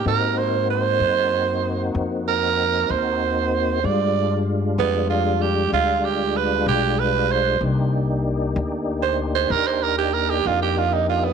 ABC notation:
X:1
M:12/8
L:1/16
Q:3/8=64
K:Cm
V:1 name="Tenor saxophone"
B2 c2 c8 z2 B4 c6 | d4 z2 =B,2 F2 G2 F2 G2 =B2 G2 B2 c2 | z8 z c z c B c B G B G F G F E F =B, |]
V:2 name="Tonewheel organ"
[B,CE_G]24 | [G,A,DF]24 | [B,DEG]24 |]
V:3 name="Upright bass" clef=bass
A,,6 _G,,6 F,,6 E,,6 | G,,6 F,,6 D,,6 =B,,,6 | C,,6 D,,6 E,,6 F,,6 |]